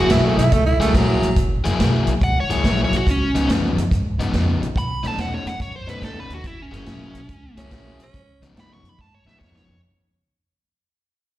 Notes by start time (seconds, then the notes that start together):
0.09 B1 F#3 A#3 E4 G#4, snare, closed hi-hat
0.25 A3
0.37 B1 E4, snare, closed hi-hat
0.52 C#2 A3, kick, closed hi-hat
0.66 E4
0.80 C#2 F#3 A3 A#3 E4 G#4, closed hi-hat
0.94 A#1 F#3 A#3 E4 G#4, kick, snare, closed hi-hat
1.22 A#1, closed hi-hat
1.36 F#1, kick, closed hi-hat
1.64 F#1 F#3 A#3 E4 G#4, closed hi-hat
1.79 B1 F#3 A#3 E4 G#4, snare, closed hi-hat
2.07 B1, closed hi-hat
2.21 C#2 F#5, kick, closed hi-hat
2.40 C#5
2.49 C#2 F#3 A#3 E4 G#4, closed hi-hat
2.64 A#1 F#3 A#3 E4 G#4, kick, snare, closed hi-hat
2.84 C#5
2.91 B1, closed hi-hat
2.96 F#4
3.06 C#2, kick, closed hi-hat
3.11 C#4
3.35 C#2 C#3 F3 B3 D#4, closed hi-hat
3.49 F#2 C#3 F3 B3 D#4, snare, closed hi-hat
3.76 F#2, closed hi-hat
3.91 G#2, kick, closed hi-hat
4.18 G#2 C#3 F3 B3 D#4, closed hi-hat
4.33 F2 C#3 F3 B3 D#4, kick, snare, closed hi-hat
4.61 A#1, closed hi-hat
4.76 B1 B5, kick, closed hi-hat
5.03 B1 B2 A3 C#4 D#4, snare, closed hi-hat
5.07 A5
5.17 E2 B2 A3 C#4 D#4 F#5, snare, closed hi-hat
5.34 C#5
5.45 E2 F#5, snare, closed hi-hat
5.60 F#2 C#5, kick, closed hi-hat
5.76 C5
5.87 F#2 B2 A3 C#4 D#4 B4, closed hi-hat
6.01 D#2 B2 A3 C#4 D#4 A4, kick, snare, closed hi-hat
6.20 B4
6.30 D#2, closed hi-hat
6.34 F#4
6.44 F#1 E4, kick, closed hi-hat
6.62 C#4
6.71 F#1 F#3 A#3 E4 G#4, snare, closed hi-hat
6.77 C#4
6.85 B1 F#3 A#3 E4 G#4, snare, closed hi-hat
7.14 B1, closed hi-hat
7.28 C#2, kick, closed hi-hat
7.56 C#2 F#3 A#3 C#4 E4 G#4, closed hi-hat
7.71 A#1 F#3 A#3 E4 G#4, kick, snare, closed hi-hat
7.99 C2, closed hi-hat
8.03 C#4
8.14 C#2, kick, closed hi-hat
8.41 C#2 C#3 F3 B3 D#4, closed hi-hat
8.54 F#2 C#3 F3 B3, snare, closed hi-hat
8.59 D#4 B5
8.73 C#6
8.83 F#2, closed hi-hat
8.89 B5
8.98 G#2 A5, kick, snare
9.14 C#5
9.25 G#2 C#3 F3 B3 D#4 E5, snare
9.39 F2 C#3 F3 B3 D#4 C#5, kick, snare
9.56 C#5, snare
9.69 F2